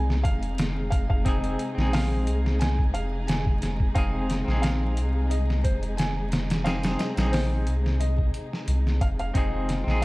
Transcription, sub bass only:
0.00 0.26 C2 medium
0.25 1.56 F1 medium
1.77 2.28 A#1 medium
2.26 2.91 C2 medium
2.94 3.92 F1 medium
3.96 4.44 F1 loud
4.47 4.98 A#1 medium
4.97 5.66 C2 medium
5.65 6.96 F1 medium
7.17 7.68 A#1 medium
7.67 8.31 C2 medium
8.67 9.03 C2 medium
9.01 9.31 F1 medium
9.35 9.83 F1 loud
9.86 10.05 A#1 medium

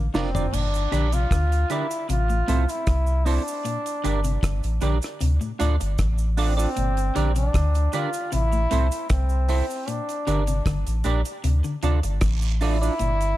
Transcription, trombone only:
0.00 0.11 A#3 medium
0.15 0.56 C4 medium
0.55 1.15 D4 loud
1.13 1.72 F4 loud
1.71 2.09 E4 loud
2.10 2.71 F4 loud
2.69 3.28 E4 loud
3.27 4.82 D4 loud
6.39 7.33 C4 loud
7.37 7.96 D4 loud
7.94 8.32 F4 loud
8.33 9.07 E4 loud
9.10 9.90 C4 medium
9.89 10.66 D4 medium
12.62 13.37 E4 loud

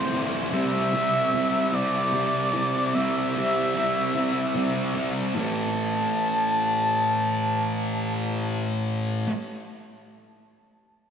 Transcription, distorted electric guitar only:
0.00 0.52 E3 medium
0.00 0.14 A3 medium
0.00 0.14 C4 medium
0.00 0.12 E4 loud
0.13 0.52 A3 medium
0.13 0.54 C4 medium
0.13 0.55 E4 medium
0.52 1.32 C3 medium
0.52 0.95 G3 loud
0.52 0.94 C4 loud
0.52 0.93 E4 loud
0.93 1.34 G3 medium
0.93 1.34 C4 medium
0.93 1.36 E4 medium
1.33 2.11 C3 medium
1.33 1.74 G3 medium
1.33 1.73 C4 medium
1.33 1.72 E4 medium
1.72 2.14 G3 medium
1.72 2.15 C4 medium
1.72 2.15 E4 medium
2.12 2.93 C3 medium
2.12 2.56 G3 medium
2.12 2.54 C4 medium
2.12 2.53 E4 loud
2.53 2.94 G3 medium
2.53 2.95 C4 medium
2.53 2.95 E4 medium
2.94 3.74 C3 medium
2.94 3.36 G3 medium
2.94 3.35 C4 loud
2.94 3.34 E4 loud
3.35 3.75 G3 medium
3.35 3.75 C4 medium
3.35 3.76 E4 medium
3.75 4.54 C3 medium
3.75 4.16 G3 medium
3.75 4.15 C4 loud
3.75 4.14 E4 medium
4.15 4.54 G3 medium
4.15 4.56 C4 medium
4.15 4.57 E4 medium
4.55 5.33 C3 medium
4.55 4.96 G3 medium
4.55 4.95 C4 medium
4.55 4.93 E4 medium
4.95 5.34 G3 medium
4.95 5.34 C4 medium
4.95 5.33 E4 medium
5.34 9.26 A2 loud
5.34 9.28 E3 loud
5.38 9.29 A3 loud

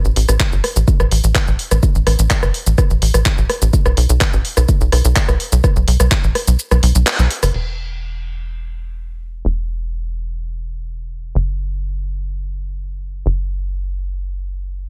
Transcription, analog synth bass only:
0.05 0.14 A1 medium
0.16 0.26 A1 medium
0.29 0.38 A1 medium
0.52 0.61 G1 medium
0.76 0.85 A1 medium
1.00 1.09 A1 medium
1.12 1.21 A1 medium
1.24 1.33 A1 medium
1.48 1.57 A1 medium
1.71 1.80 A1 medium
1.95 2.04 A1 medium
2.07 2.16 A1 medium
2.19 2.28 A1 medium
2.43 2.52 G1 medium
2.67 2.76 A1 medium
2.90 2.99 A1 medium
3.02 3.11 A1 medium
3.14 3.23 A1 medium
3.38 3.47 A1 medium
3.62 3.71 A1 medium
3.86 3.95 B1 medium
3.97 4.07 B1 medium
4.09 4.18 B1 medium
4.33 4.42 A1 medium
4.57 4.66 B1 medium
4.81 4.90 B1 medium
4.92 5.02 B1 medium
5.05 5.14 B1 medium
5.29 5.37 B1 medium
5.52 5.61 B1 medium
5.76 5.85 B1 medium
5.88 5.97 B1 medium
6.00 6.09 B1 medium
6.24 6.33 A1 medium
6.48 6.57 B1 medium
6.71 6.80 B1 medium
6.83 6.92 B1 medium
6.95 7.04 B1 medium
7.19 7.28 B1 medium
7.43 7.52 F#1 medium
7.54 9.43 E1 medium
9.45 11.33 E1 medium
11.35 13.23 F#1 medium
13.26 14.89 F#1 medium

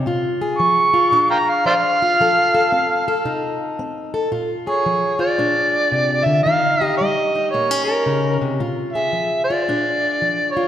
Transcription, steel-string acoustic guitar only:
0.06 0.55 A#2 medium
0.06 0.93 F4 medium
0.41 2.17 G#4 medium
0.60 1.09 F3 medium
0.94 2.02 F4 medium
1.11 1.61 A#2 medium
1.11 2.16 D4 medium
1.65 2.15 F3 medium
2.02 3.25 F4 medium
2.20 2.69 F3 medium
2.20 2.53 A4 medium
2.55 3.07 A4 medium
2.72 3.21 C4 medium
3.08 4.13 A4 medium
3.25 3.75 C3 medium
3.25 4.29 D#4 medium
3.79 4.28 C4 medium
4.14 4.30 A4 medium
4.32 4.81 A#2 medium
4.32 5.18 F4 medium
4.67 6.43 G#4 medium
4.86 5.35 F3 medium
5.19 6.43 F4 medium
5.38 5.88 A#2 medium
5.38 6.43 D4 medium
5.92 6.26 C3 medium
6.26 6.45 D3 medium
6.46 6.95 D#3 medium
6.46 7.34 D#4 medium
6.81 8.60 G4 medium
7.01 7.49 G3 medium
7.35 8.58 D#4 medium
7.54 8.03 A#2 medium
7.54 7.71 A#3 medium
7.71 8.60 C#4 soft
8.06 8.40 C#3 medium
8.41 8.59 C3 medium
8.60 9.09 A#2 medium
8.60 9.50 F4 medium
8.95 10.68 G#4 medium
9.13 9.62 F3 medium
9.50 10.55 F4 medium
9.68 10.17 A#2 medium
9.68 10.68 D4 medium
10.22 10.68 F3 medium
10.57 10.68 F4 medium

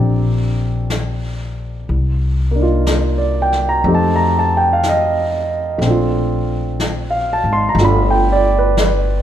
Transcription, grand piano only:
0.00 1.88 A#3 soft
0.00 1.88 C4 soft
0.00 1.89 D4 soft
0.00 1.90 F4 soft
0.00 1.90 G4 soft
0.00 1.18 A4 medium
0.00 1.91 D5 medium
0.00 1.91 G5 medium
2.51 3.84 A#3 soft
2.55 3.86 D4 soft
2.60 3.86 D#4 soft
2.60 3.89 F4 medium
3.18 3.51 D5 medium
3.42 3.63 G5 medium
3.69 3.85 A#5 medium
3.86 5.76 A3 medium
3.86 5.80 C4 medium
3.86 5.83 D#4 soft
3.86 5.83 G4 medium
3.95 4.22 A5 medium
4.16 4.49 A#5 medium
4.39 4.45 A5 medium
4.57 4.75 G5 medium
4.73 4.83 F5 medium
4.89 5.27 D#5 medium
5.78 7.76 A3 medium
5.78 7.78 C4 medium
5.86 7.79 D4 soft
5.90 7.79 F4 medium
7.11 7.43 F5 medium
7.33 7.39 A5 medium
7.53 7.70 C6 medium
7.69 7.79 A#5 medium
7.79 9.22 A3 soft
7.79 9.22 B3 soft
7.79 9.22 D4 soft
7.79 9.22 F4 medium
7.84 8.13 B5 medium
8.10 8.43 G5 medium
8.32 8.54 D5 medium
8.59 8.76 B4 medium
8.83 9.22 B4 medium

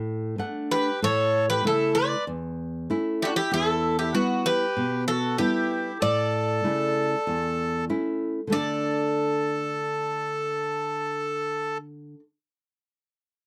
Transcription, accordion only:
0.72 1.00 G4 medium
1.03 1.46 A4 medium
1.51 1.64 G4 medium
1.66 1.94 E4 medium
1.95 2.24 B4 medium
3.22 3.33 D4 medium
3.22 3.28 E4 medium
3.36 3.51 E4 medium
3.54 3.97 E4 medium
4.00 4.14 E4 medium
4.15 4.44 B3 medium
4.46 5.05 G4 medium
5.10 5.38 F#4 medium
5.38 5.98 E4 medium
6.00 7.85 A4 loud
8.51 11.78 A4 medium

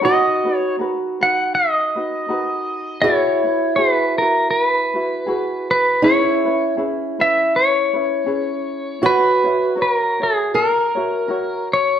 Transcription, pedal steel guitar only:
0.05 0.57 D#5 loud
0.57 0.75 C#5 loud
1.23 1.54 F#5 medium
1.55 3.09 D#5 loud
3.02 3.76 C#5 medium
3.76 3.93 C5 medium
3.93 4.18 B4 medium
4.18 4.50 A#4 medium
4.51 4.62 A#4 medium
4.62 5.70 B4 medium
5.71 6.04 B4 medium
6.04 6.75 C#5 medium
7.21 7.55 E5 medium
7.56 9.06 C#5 medium
9.06 9.82 B4 medium
9.82 9.93 B4 medium
9.93 10.24 A#4 medium
10.23 10.56 G#4 medium
10.55 11.68 A#4 medium
11.73 12.00 C#5 medium

